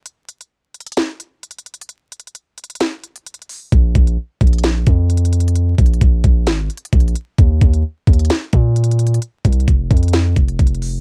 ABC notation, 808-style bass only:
X:1
M:4/4
L:1/8
Q:1/4=131
K:Ebdor
V:1 name="808-style bass" clef=bass
z8 | z8 | B,,, B,,, z B,,,2 F,,3- | F,, B,,, B,,, B,,, A,,, z B,,, z |
E,, E,, z E,, z B,,3 | z C,, F,,, F,,2 F,,, F,,,2 |]